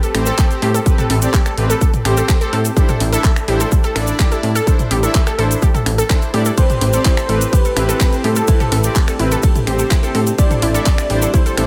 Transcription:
0.03 A4, closed hi-hat, shaker
0.15 A1 C4 G4 C5, finger snap, open hi-hat, high conga
0.26 A4, closed hi-hat, shaker
0.38 A4, kick, clap, closed hi-hat, shaker
0.51 C4 G4 C5, closed hi-hat, shaker
0.62 A2 G4, open hi-hat, high conga
0.74 A4, closed hi-hat, shaker
0.86 C4 G4 B4, kick, closed hi-hat, shaker
0.98 A4, closed hi-hat, mid tom, shaker
1.10 A1 A4, open hi-hat, high conga
1.22 C4 G4 D5, closed hi-hat, shaker
1.34 G4, kick, clap, closed hi-hat, shaker
1.46 A4, finger snap, closed hi-hat, shaker
1.58 A1 C4 G4 B4, open hi-hat
1.70 A4, closed hi-hat, shaker
1.81 A4, kick, closed hi-hat, shaker
1.94 closed hi-hat, mid tom, shaker
2.05 A1 C4 G4 C5, finger snap, open hi-hat, high conga
2.17 A4, closed hi-hat, shaker
2.29 kick, clap, closed hi-hat, shaker
2.41 C4 G4 A4 C5, closed hi-hat, shaker
2.53 A2 A4, open hi-hat, high conga
2.65 closed hi-hat, shaker
2.77 D4 E4 G4 C5, kick, closed hi-hat, shaker
2.89 A4, closed hi-hat, mid tom, shaker
3.00 A1, open hi-hat, high conga
3.12 D4 E4 A4 E5, closed hi-hat, shaker
3.24 A4, kick, clap, closed hi-hat, shaker
3.36 finger snap, closed hi-hat, shaker
3.48 A1 D4 E4 G4 C5, open hi-hat
3.60 A4, closed hi-hat, shaker
3.72 kick, closed hi-hat, shaker
3.84 A4, closed hi-hat, shaker
3.96 A1 D4 E4 A4 D5, finger snap, open hi-hat, high conga
4.07 closed hi-hat, shaker
4.19 G4, kick, clap, closed hi-hat, shaker
4.32 D4 E4 A4 D5, closed hi-hat, shaker
4.43 A2, open hi-hat, high conga
4.55 A4, closed hi-hat, shaker
4.67 D4 E4 A4 C5, kick, closed hi-hat, shaker
4.79 closed hi-hat, mid tom, shaker
4.91 A1 G4, open hi-hat, high conga
5.03 D4 E4 A4 E5, closed hi-hat, shaker
5.15 kick, clap, closed hi-hat, shaker
5.27 A4, finger snap, closed hi-hat, shaker
5.38 A1 D4 E4 A4 C5, open hi-hat
5.51 closed hi-hat, shaker
5.62 G4, kick, closed hi-hat, shaker
5.74 A4, closed hi-hat, mid tom, shaker
5.86 A1, finger snap, open hi-hat, high conga
5.98 A4, closed hi-hat, shaker
6.10 D4 E4 A4 C5, kick, clap, closed hi-hat, shaker
6.22 closed hi-hat, shaker
6.34 A2 D4 E4 G4 D5, open hi-hat, high conga
6.45 A4, closed hi-hat, shaker
6.57 C3 A3 C4 E4 G4 A4 B4 C5, kick, closed hi-hat, ride, shaker
6.70 closed hi-hat, mid tom, shaker
6.81 A1 G4, open hi-hat, high conga
6.93 C4 G4 A4 D5, closed hi-hat, shaker
7.05 E4, kick, clap, closed hi-hat, ride, shaker
7.17 A4, finger snap, closed hi-hat, shaker
7.29 A1 C4 G4 A4 B4, open hi-hat
7.41 closed hi-hat, shaker
7.53 G4 B4, kick, closed hi-hat, ride, shaker
7.65 A4, closed hi-hat, shaker
7.77 A1 C4 E4 G4 B4, finger snap, open hi-hat, high conga
7.89 A4, closed hi-hat, shaker
8.00 A4, kick, clap, closed hi-hat, ride, shaker
8.13 C4 G4 C5, closed hi-hat, shaker
8.24 A2 G4 A4, open hi-hat, high conga
8.36 A4, closed hi-hat, shaker
8.47 C4 D4 E4 G4 B4, kick, closed hi-hat, ride, shaker
8.60 A4, closed hi-hat, mid tom, shaker
8.72 A1 A4, open hi-hat, high conga
8.83 C4 G4 D5, closed hi-hat, shaker
8.95 G4, kick, clap, closed hi-hat, ride, shaker
9.08 A4, finger snap, closed hi-hat, shaker
9.19 A1 C4 E4 G4 B4, open hi-hat
9.32 A4, closed hi-hat, shaker
9.43 A4, kick, closed hi-hat, ride, shaker
9.55 closed hi-hat, mid tom, shaker
9.67 A1 C4 G4 C5, finger snap, open hi-hat, high conga
9.79 A4, closed hi-hat, shaker
9.91 E4, kick, clap, closed hi-hat, ride, shaker
10.03 C4 G4 A4 C5, closed hi-hat, shaker
10.15 A2 A4, open hi-hat, high conga
10.27 closed hi-hat, shaker
10.38 D3 G3 C4 D4 E4 G4 C5 D5, kick, closed hi-hat, ride, shaker
10.51 A4, closed hi-hat, mid tom, shaker
10.62 A1 E4, open hi-hat, high conga
10.74 D4 E4 A4 E5, closed hi-hat, shaker
10.86 A4, kick, clap, closed hi-hat, ride, shaker
10.98 finger snap, closed hi-hat, shaker
11.10 A1 D4 E4 G4 C5, open hi-hat
11.22 A4, closed hi-hat, shaker
11.34 E4 C5, kick, closed hi-hat, ride, shaker
11.46 A4, closed hi-hat, shaker
11.57 A1 D4 E4 A4 D5, finger snap, open hi-hat, high conga

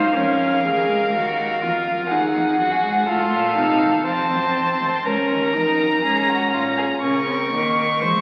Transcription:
Already playing: F#2 D#4 C5 F5
0.14 F2 C#4 A#4
0.64 D#2 G#4
0.89 C#2
1.13 D#2 F#4
1.62 F2 F4
1.87 F#2
2.10 D#2 D#4 G#4 F#5
2.36 F2
2.59 F#2 F#4
2.84 G#2
3.08 A2 F4 A4 F5
3.33 A#2
3.57 C3 D#4
3.82 D#2
4.06 F2 C4 C5 A5
4.31 F#2
4.56 F2
4.81 D#2
5.05 C#2 C#4 A#4 A#5
5.30 D#2
5.54 F2 D#4
5.80 F#2
6.03 G#2 C#4 G#4
6.29 F#4
6.53 A#2 F4
6.78 G#4
7.02 C#3 C#4 A#4 C#6
7.27 C4
7.52 D#3 A#3
8.01 F3 G#3 C5

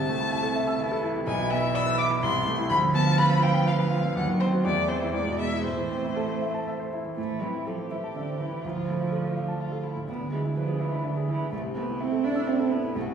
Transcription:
Already playing: C2 C3 A5
0.09 A3
0.20 E4
0.32 E5
0.43 A4
0.56 E5
0.67 E6
0.80 E3 E5
0.92 A4
1.03 E4
1.15 C3
1.27 B1 E3 G#5
1.39 B2
1.51 B3 E5
1.62 E4
1.74 D5 E6
1.86 B4
1.98 E5 D6
2.11 D6
2.22 C2 C6
2.35 C3
2.47 A3
2.58 E4
2.69 D2 F3 B5
2.82 D3
2.94 B3 A5
3.07 F4
3.18 B4 B5
3.31 F4
3.43 F5 G5
3.54 B5
3.66 F5
3.79 B4
3.90 F4
4.03 D3
4.15 D#2 F#3 F#5
4.28 D#3
4.40 C4 C5
4.53 F#4
4.65 E2 A3 D5
4.77 E3
4.88 C4 C5
5.02 E4
5.14 E2 G#3 D5
5.27 B2
5.39 B3 E5
5.52 E4
5.64 A2 A3 C5
5.77 E3
5.91 C4
6.04 E4
6.16 A4
6.29 C5
6.42 E5
6.54 A5
6.68 E5
6.80 C5
6.93 E4
7.06 E3
7.17 A2 A3 E4
7.30 E3
7.42 E3 C4
7.54 E4
7.66 F3 G4 A4
7.79 C5
7.91 E3 E5
8.04 A5
8.14 D3 E5
8.28 C5
8.39 E3 E4
8.53 E3
8.62 D2 F3 F4
8.76 A2
8.88 A3 E4
9.01 F4
9.12 D4 A4
9.24 F4
9.36 F5
9.48 A5
9.60 F4 F5
9.72 A4
9.83 E4 F4
9.96 A2
10.08 D2 B3 D4
10.20 D3
10.32 E3 G#3
10.44 E4
10.57 F3 B4
10.68 G#4
10.80 E3 E5
10.92 B5
11.04 D3 E5
11.17 G#4
11.29 E3 E4
11.41 D3
11.51 C2 A3 C4
11.64 C3
11.76 A3 B3
11.89 E4
11.99 C4 E4 E5
12.12 A4
12.24 D4 E5
12.36 E6
12.47 C4 E5
12.60 A4
12.71 B3 E4
12.84 C3
12.95 C2 A3 F#4
13.08 C3

